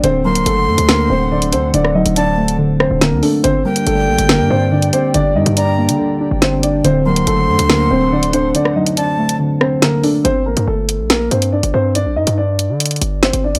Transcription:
<<
  \new Staff \with { instrumentName = "Flute" } { \time 4/4 \key g \minor \tempo 4 = 141 r8 c'''2.~ c'''8 | r4 a''4 r2 | r8 g''2.~ g''8 | r4 bes''4 r2 |
r8 c'''2.~ c'''8 | r4 a''4 r2 | r1 | r1 | }
  \new Staff \with { instrumentName = "Analog synth pad" } { \time 4/4 \key g \minor << { <a' c'' fis''>1~ | <a' c'' fis''>1 | <g' d'' g''>1~ | <g' d'' g''>1 |
<a' c'' fis''>1~ | <a' c'' fis''>1 | r1 | r1 | } \\ { d'1~ | d'1~ | d'1~ | d'1 |
d'1~ | d'1 | r1 | r1 | } >> }
  \new Staff \with { instrumentName = "Grand piano" } { \time 4/4 \key g \minor <c' c''>8 <bes bes'>8 <a a'>4 <bes bes'>8 <c' c''>8 <d' d''>8 <c' c''>8 | <d' d''>8 <ees' ees''>8 <d' d''>4 r8 <c' c''>8 <bes bes'>8 <a a'>8 | <c' c''>8 <bes bes'>8 <a a'>4 <bes bes'>8 <c' c''>8 <d' d''>8 <c' c''>8 | <d' d''>8 <ees' ees''>8 <d' d''>2 <c' c''>8 <d' d''>8 |
<c' c''>8 <bes bes'>8 <a a'>4 <bes bes'>8 <c' c''>8 <d' d''>8 <c' c''>8 | <d' d''>8 <ees' ees''>8 <d' d''>4 r8 <c' c''>8 <bes bes'>8 <a a'>8 | <c' c''>8 <bes bes'>8 <a a'>4 <bes bes'>8 <c' c''>8 <d' d''>8 <c' c''>8 | <d' d''>8 <ees' ees''>8 <d' d''>2 <c' c''>8 <d' d''>8 | }
  \new Staff \with { instrumentName = "Synth keys" } { \clef bass \time 4/4 \key g \minor d8 fis4 a8 d8 c'8 d8 d'8 | d8 fis4 a8 d8 c'8 d8 d'8 | d8 g4 bes8 d8 d'8 d8 d''8 | d8 g4 bes8 d8 d'8 d8 d''8 |
d8 fis4 a8 d8 c'8 d8 d'8 | d8 fis4 a8 d8 c'8 d8 d'8 | r1 | r1 | }
  \new Staff \with { instrumentName = "808-style bass" } { \clef bass \time 4/4 \key g \minor d,,8. c,,16 fis,,8 fis,16 d,8. d,,4 d,8 | d,,8. d,,2 d,,8 d,16 r8 | g,,8 r8 g,,8 bes,,16 g,,8 g,16 g,4 r8 | g,,8 g,16 g,4 d4 g,,4~ g,,16 |
d,,8. c,,16 fis,,8 fis,16 d,8. d,,4. | r1 | g,,8 a,,16 g,16 g,,8. bes,,8. g,8. g,,16 g,8~ | g,16 bes,,16 g,16 g,4 d8. g,,8. g,,8 g,16 | }
  \new DrumStaff \with { instrumentName = "Drums" } \drummode { \time 4/4 hh8. hh16 hh8. hh16 sn4 r16 hh16 hh8 | hh16 ss8 hh16 hh8. hh16 r8 ss8 <hh sn>8 hho8 | hh8. hh16 hh8. hh16 sn4 r16 hh16 hh8 | hh8. hh16 hh8. hh16 r4 <hh sn>8 hh8 |
hh8. hh16 hh8. hh16 sn4 r16 hh16 hh8 | hh16 ss8 hh16 hh8. hh16 r8 ss8 <hh sn>8 hho8 | hh8. hh16 r8 hh8 <hh sn>8 hh16 hh16 r16 hh8. | hh8. hh16 r8 hh8 hh32 hh32 hh32 hh32 hh8 sn16 hh8 hh16 | }
>>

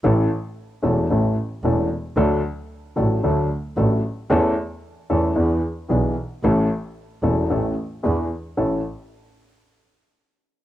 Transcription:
<<
  \new Staff \with { instrumentName = "Upright piano" } { \time 4/4 \key a \major \tempo 4 = 113 <a,, a, e a cis' a'>8 r4 <e,, e, e a cis' a'>8 <a,, a, e a cis' a'>8 r8 <e,, e, e a cis' a'>8 r8 | <d, d fis a d' a'>8 r4 <a,, a, fis a d' a'>8 <d, d fis a d' a'>8 r8 <a,, a, fis a d' a'>8 r8 | <e, e a cis' a'>8 r4 <e, e a cis' a'>8 <e, e b d' gis'>8 r8 <b,, b, e b d' gis'>8 r8 | <a,, a, e a cis' a'>8 r4 <e,, e, e a cis' a'>8 <a,, a, e a cis' a'>8 r8 <e, e b d' gis'>8 r8 |
<a,, cis' e' a'>8 r2. r8 | }
  \new Staff \with { instrumentName = "Double bass" } { \clef bass \time 4/4 \key a \major a,,8 r4 e,,8 a,,8 r8 e,,8 r8 | d,8 r4 a,,8 d,8 r8 a,,8 r8 | e,8 r4 e,8 e,8 r8 b,,8 r8 | a,,8 r4 e,,8 a,,8 r8 e,8 r8 |
a,,8 r2. r8 | }
>>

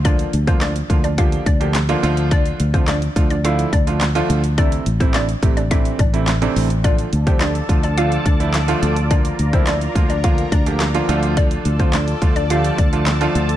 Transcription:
<<
  \new Staff \with { instrumentName = "Supersaw synth" } { \time 4/4 \key d \minor \tempo 4 = 106 r1 | r1 | r1 | r1 |
<bes' bes''>2.~ <bes' bes''>8 <a' d'' a''>8~ | <a' d'' a''>1 | }
  \new Staff \with { instrumentName = "Synth pluck" } { \time 4/4 \key d \minor <d' d''>16 r8 <c' c''>16 <d' d''>16 r8 <d' d''>16 <f' f''>8 <d' d''>16 r4 r16 | <d' d''>16 r8 <c' c''>16 <d' d''>16 r8 <d' d''>16 <f' f''>8 <d' d''>16 r4 r16 | <d' d''>16 r8 <c' c''>16 <d' d''>16 r8 <d' d''>16 <e' e''>8 <d' d''>16 r4 r16 | <d' d''>16 r8 <c' c''>16 <d' d''>16 r8 <d' d''>16 <f' f''>8 <d' d''>16 r4 r16 |
<d' d''>16 r8 <c' c''>16 <d' d''>16 r8 <d' d''>16 <f' f''>8 <d' d''>16 r4 r16 | <d' d''>16 r8 <c' c''>16 <d' d''>16 r8 <d' d''>16 <f' f''>8 <d' d''>16 r4 r16 | }
  \new Staff \with { instrumentName = "Grand piano" } { \time 4/4 \key d \minor <d f bes d' f'>8 r16 <d f bes d' f'>8 r16 <d f bes d' f'>16 r16 <d f bes d' g'>8 r16 <d f bes d' g'>16 r16 <d f bes d' f'>16 <d f a d' f'>8~ | <d f a d' f'>8 r16 <d f a d' f'>8 r16 <d f a d' f'>16 r16 <d f a d' e'>8 r16 <d f a d' f'>16 r16 <d f a d' f'>8 r16 | <c e a c' e'>8 r16 <c e a c' e'>8 r16 <c e a c' g'>16 r16 <c e a c' d'>8 r16 <c e a c' e'>16 r16 <c e a c' d'>8 r16 | <d f a d' f'>8 r16 <d f a d' g'>8 r16 <d f a d' f'>16 r16 <d f a d' f'>8 r16 <d f a d' e'>16 r16 <d f a d' f'>8 r16 |
<d f bes d' f'>8 r16 <d f bes d' e'>8 r16 <d f bes d' f'>16 r16 <d f bes d' f'>8 r16 <d f bes d' g'>16 r16 <d f bes d' f'>16 <d f a d' f'>8~ | <d f a d' f'>8 r16 <d f a d' f'>8 r16 <d f a d' f'>16 r16 <d f a d' g'>8 r16 <d f a d' f'>16 r16 <d f a d' f'>8 r16 | }
  \new Staff \with { instrumentName = "Fingered electric bass" } { \clef bass \time 4/4 \key d \minor d,8 d,4 d,4 d,4 d,8~ | d,8 d,4 d,4 d,4 d,8~ | d,8 a,,4 a,,4 a,,4 a,,8~ | a,,8 d,4 d,4 d,4 d,8~ |
d,8 d,4 d,4 d,4 d,8~ | d,8 d,4 d,4 d,4 d,8 | }
  \new DrumStaff \with { instrumentName = "Drums" } \drummode { \time 4/4 <hh bd>16 hh16 hh16 <hh bd>16 <hc hh sn>16 hh16 <hh bd>16 hh16 <hh bd>16 hh16 <hh bd>16 hh16 <hc hh sn>16 hh16 hh16 hh16 | <hh bd>16 hh16 hh16 <hh bd>16 <hc hh sn>16 hh16 <hh bd>16 hh16 hh16 hh16 <hh bd>16 hh16 <hc hh sn>16 hh16 hh16 hh16 | <hh bd>16 hh16 hh16 <hh bd>16 <hc hh sn>16 hh16 <hh bd>16 hh16 <hh bd>16 hh16 <hh bd>16 hh16 <hc hh sn>16 hh16 hho16 hh16 | <hh bd>16 hh16 hh16 <hh bd>16 <hc hh sn>16 hh16 <hh bd>16 hh16 hh16 hh16 <hh bd>16 hh16 <hc hh sn>16 hh16 hh16 hh16 |
<hh bd>16 hh16 hh16 <hh bd>16 <hc hh sn>16 hh16 <hh bd>16 hh16 <hh bd>16 hh16 <hh bd>16 hh16 <hc hh sn>16 hh16 hh16 hh16 | <hh bd>16 hh16 hh16 <hh bd>16 <hc hh sn>16 hh16 <hh bd>16 hh16 hh16 hh16 <hh bd>16 hh16 <hc hh sn>16 hh16 hh16 hh16 | }
>>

